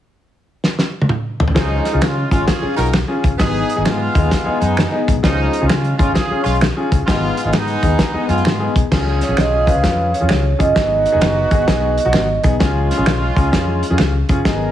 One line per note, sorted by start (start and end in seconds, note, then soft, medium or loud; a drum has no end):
0.64 snare medium
0.79 snare medium
1.02 high tom medium
1.09 mid tom medium
1.40 floor tom loud
1.48 floor tom medium
1.54 1.78 C#2 medium
1.54 2.00 F3 medium
1.54 2.00 G#3 loud
1.54 1.81 C#4 medium
1.54 1.99 D#4 loud
1.54 1.82 F4 medium
1.54 1.82 G#4 medium
1.54 kick medium
1.54 snare loud
1.54 closed hi-hat medium
1.85 snare soft
1.85 closed hi-hat medium
1.93 2.00 C#2 medium
1.93 2.13 C#4 medium
1.93 2.13 F4 medium
1.93 2.13 G#4 medium
2.01 2.24 C#3 medium
2.01 2.26 G#3 medium
2.01 2.26 C#4 medium
2.01 2.26 F4 medium
2.01 finger snap medium
2.01 snare loud
2.01 closed hi-hat medium
2.31 2.44 G#1 medium
2.31 2.45 G#3 medium
2.31 2.46 C#4 medium
2.31 2.45 C#4 medium
2.31 2.45 F4 medium
2.31 2.46 F4 medium
2.31 2.46 G#4 medium
2.31 kick medium
2.31 closed hi-hat medium
2.47 2.72 C#4 medium
2.47 2.72 F4 medium
2.47 2.71 G#4 medium
2.47 kick medium
2.47 snare loud
2.47 closed hi-hat medium
2.62 2.88 C#4 medium
2.62 2.88 F4 medium
2.62 2.89 G#4 medium
2.62 muted fingered electric bass stroke soft
2.76 3.01 B1 medium
2.76 2.90 D#4 loud
2.76 2.90 F#4 loud
2.76 2.90 A#4 loud
2.76 closed hi-hat medium
2.85 closed hi-hat soft
2.93 finger snap medium
2.93 snare medium
2.93 closed hi-hat medium
3.08 3.30 C#4 medium
3.08 3.30 F4 medium
3.08 3.30 G#4 medium
3.24 3.30 C#2 medium
3.24 kick medium
3.24 closed hi-hat medium
3.32 3.38 F#1 medium
3.38 3.62 G#1 loud
3.38 3.83 B3 loud
3.38 3.66 B3 medium
3.38 3.82 D#4 loud
3.38 3.66 D#4 medium
3.38 3.83 G#4 loud
3.38 3.66 G#4 medium
3.38 kick medium
3.38 snare loud
3.38 closed hi-hat medium
3.69 closed hi-hat medium
3.76 3.84 G#1 medium
3.76 3.96 B3 medium
3.76 3.97 D#4 medium
3.76 3.97 G#4 medium
3.85 4.08 G#2 medium
3.85 4.58 G#3 loud
3.85 4.57 B3 loud
3.85 4.57 F4 loud
3.85 finger snap medium
3.85 snare medium
3.85 closed hi-hat medium
4.15 4.28 D#2 medium
4.15 4.30 B3 medium
4.15 4.30 D#4 medium
4.15 4.30 G#4 medium
4.15 kick medium
4.15 closed hi-hat medium
4.31 kick medium
4.31 snare medium
4.31 closed hi-hat medium
4.45 4.72 B3 medium
4.45 4.72 D#4 medium
4.45 4.72 G#4 medium
4.45 muted fingered electric bass stroke soft
4.60 4.85 F#2 medium
4.60 5.04 G#3 medium
4.60 5.04 B3 medium
4.60 5.04 D#4 medium
4.60 closed hi-hat medium
4.77 finger snap medium
4.77 snare medium
4.77 closed hi-hat medium
4.92 5.14 B3 medium
4.92 5.14 D#4 medium
4.92 5.14 G#4 medium
5.08 5.14 G#2 medium
5.08 kick loud
5.08 closed hi-hat medium
5.16 5.22 B1 medium
5.23 5.46 C#2 loud
5.23 5.67 F3 medium
5.23 5.68 G#3 medium
5.23 5.50 C#4 medium
5.23 5.67 D#4 loud
5.23 5.50 F4 medium
5.23 5.50 G#4 medium
5.23 kick medium
5.23 snare loud
5.23 closed hi-hat medium
5.53 closed hi-hat medium
5.61 5.68 C#2 medium
5.61 5.81 C#4 medium
5.61 5.81 F4 medium
5.61 5.81 G#4 medium
5.68 5.93 C#3 medium
5.68 5.93 G#3 medium
5.68 5.93 C#4 medium
5.68 5.93 F4 medium
5.68 finger snap medium
5.68 snare loud
5.68 closed hi-hat medium
5.84 closed hi-hat soft
5.98 6.11 G#1 medium
5.98 6.12 G#3 medium
5.98 6.12 C#4 medium
5.98 6.14 C#4 medium
5.98 6.12 F4 loud
5.98 6.14 F4 medium
5.98 6.14 G#4 medium
5.98 kick medium
5.98 closed hi-hat medium
6.13 6.39 C#4 medium
6.13 6.39 F4 medium
6.13 6.38 G#4 loud
6.13 kick medium
6.13 snare loud
6.13 closed hi-hat medium
6.31 6.57 C#4 medium
6.31 6.57 F4 medium
6.31 6.57 G#4 medium
6.31 muted fingered electric bass stroke soft
6.43 6.69 B1 medium
6.43 6.57 G#3 loud
6.43 6.57 C#4 loud
6.43 6.57 F4 loud
6.43 closed hi-hat medium
6.55 closed hi-hat soft
6.61 finger snap medium
6.61 snare medium
6.61 closed hi-hat medium
6.77 6.98 C#4 medium
6.77 6.98 F4 medium
6.77 6.98 G#4 medium
6.92 6.98 C#2 medium
6.92 kick medium
6.92 closed hi-hat medium
7.00 7.06 F#1 medium
7.06 7.30 G#1 loud
7.06 7.50 G#3 loud
7.06 7.51 B3 loud
7.06 7.34 B3 medium
7.06 7.34 D#4 medium
7.06 7.50 F4 loud
7.06 7.34 G#4 medium
7.06 kick medium
7.06 snare loud
7.06 closed hi-hat medium
7.37 closed hi-hat medium
7.45 7.51 G#1 medium
7.45 7.65 B3 medium
7.45 7.65 D#4 medium
7.45 7.65 G#4 medium
7.52 7.75 G#2 medium
7.52 8.25 G#3 loud
7.52 8.25 B3 loud
7.52 8.25 D#4 loud
7.52 finger snap medium
7.52 snare loud
7.52 closed hi-hat medium
7.67 closed hi-hat soft
7.82 7.95 D#2 medium
7.82 7.98 B3 medium
7.82 7.98 D#4 medium
7.82 7.98 G#4 medium
7.82 kick medium
7.82 closed hi-hat medium
7.99 kick medium
7.99 snare loud
7.99 closed hi-hat medium
8.14 8.40 B3 medium
8.14 8.40 D#4 medium
8.14 8.40 G#4 medium
8.14 muted fingered electric bass stroke soft
8.28 8.41 F#2 medium
8.28 8.73 G#3 medium
8.28 8.72 B3 medium
8.28 8.73 F4 medium
8.28 closed hi-hat medium
8.38 closed hi-hat soft
8.45 8.67 G#2 medium
8.45 finger snap medium
8.45 snare loud
8.45 closed hi-hat medium
8.60 8.81 B3 medium
8.60 8.81 D#4 medium
8.60 8.81 G#4 medium
8.76 8.82 B1 medium
8.76 kick medium
8.76 closed hi-hat medium
8.91 9.20 C#2 medium
8.91 10.56 C#4 medium
8.91 9.18 C#4 medium
8.91 9.18 F4 medium
8.91 10.56 F4 medium
8.91 10.56 G#4 medium
8.91 9.18 G#4 medium
8.91 kick medium
8.91 snare loud
8.91 crash medium
9.21 9.38 C#5 medium
9.21 snare soft
9.21 closed hi-hat medium
9.28 9.35 A#1 medium
9.28 9.48 C#4 medium
9.28 9.49 F4 medium
9.28 9.49 G#4 medium
9.37 9.65 B1 medium
9.37 9.69 D#5 medium
9.37 finger snap medium
9.37 snare medium
9.37 closed hi-hat medium
9.67 9.77 C#4 medium
9.67 9.77 F4 medium
9.67 9.77 B4 medium
9.67 10.16 F5 loud
9.67 kick medium
9.67 closed hi-hat medium
9.76 9.82 C#2 medium
9.83 10.12 F2 medium
9.83 10.09 C#4 medium
9.83 10.09 F4 medium
9.83 10.10 B4 medium
9.83 kick medium
9.83 snare loud
9.83 closed hi-hat medium
10.14 10.57 C#5 medium
10.14 closed hi-hat medium
10.20 10.28 F2 medium
10.20 10.40 C#4 medium
10.20 10.41 F4 medium
10.20 10.41 G#4 medium
10.29 10.52 C#2 medium
10.29 finger snap medium
10.29 snare loud
10.29 closed hi-hat medium
10.59 10.72 F#1 medium
10.59 10.69 C#4 medium
10.59 10.69 F4 medium
10.59 10.69 G#4 medium
10.59 12.40 D#5 medium
10.59 kick loud
10.59 closed hi-hat medium
10.74 11.04 G#1 medium
10.74 11.01 B3 medium
10.74 12.41 B3 medium
10.74 11.01 D#4 medium
10.74 12.41 D#4 medium
10.74 12.41 F#4 medium
10.74 11.02 G#4 medium
10.74 kick medium
10.74 snare loud
10.74 closed hi-hat medium
11.06 closed hi-hat medium
11.12 11.20 F1 medium
11.12 11.32 B3 medium
11.12 11.32 D#4 medium
11.12 11.32 G#4 medium
11.21 11.44 F#1 medium
11.21 finger snap loud
11.21 snare loud
11.21 closed hi-hat medium
11.51 11.63 G#1 medium
11.51 11.61 B3 medium
11.51 11.61 D#4 medium
11.51 11.61 G#4 medium
11.51 kick medium
11.51 closed hi-hat medium
11.67 11.96 B1 medium
11.67 11.94 B3 medium
11.67 11.94 D#4 medium
11.67 11.94 G#4 loud
11.67 kick medium
11.67 snare loud
11.67 closed hi-hat medium
11.98 closed hi-hat medium
12.05 12.12 B1 medium
12.05 12.25 B3 medium
12.05 12.25 D#4 medium
12.05 12.25 F#4 medium
12.13 12.36 G#1 medium
12.13 finger snap medium
12.13 snare medium
12.13 closed hi-hat medium
12.43 12.56 B1 medium
12.43 12.53 B3 medium
12.43 12.53 D#4 medium
12.43 12.53 G#4 medium
12.43 kick medium
12.43 closed hi-hat medium
12.59 12.89 C#2 loud
12.59 14.26 G#3 medium
12.59 12.86 C#4 medium
12.59 14.26 C#4 medium
12.59 12.86 F4 medium
12.59 14.26 F4 loud
12.59 12.86 G#4 medium
12.59 kick loud
12.59 snare medium
12.59 closed hi-hat medium
12.91 snare soft
12.91 closed hi-hat medium
12.97 13.05 A#1 medium
12.97 13.17 C#4 medium
12.97 13.17 F4 medium
12.97 13.17 G#4 medium
13.06 13.29 B1 medium
13.06 finger snap loud
13.06 snare loud
13.06 closed hi-hat medium
13.36 13.49 C#2 medium
13.36 13.46 C#4 medium
13.36 13.46 F4 medium
13.36 13.46 G#4 medium
13.36 kick medium
13.36 closed hi-hat medium
13.52 13.81 F2 medium
13.52 13.78 C#4 medium
13.52 13.78 F4 medium
13.52 13.79 G#4 medium
13.52 kick medium
13.52 snare loud
13.52 closed hi-hat medium
13.83 closed hi-hat medium
13.90 13.97 F2 medium
13.90 14.10 C#4 medium
13.90 14.10 F4 medium
13.90 14.10 G#4 medium
13.98 14.21 C#2 medium
13.98 finger snap medium
13.98 snare medium
13.98 closed hi-hat medium
14.29 14.41 F#1 medium
14.29 14.39 C#4 medium
14.29 14.39 F4 medium
14.29 14.39 G#4 medium
14.29 kick loud
14.29 closed hi-hat medium
14.44 14.72 G#1 loud
14.44 14.72 B3 medium
14.44 14.71 B3 medium
14.44 14.72 D#4 medium
14.44 14.72 G#4 medium
14.44 14.72 A#4 medium
14.44 kick medium
14.44 snare loud
14.44 closed hi-hat medium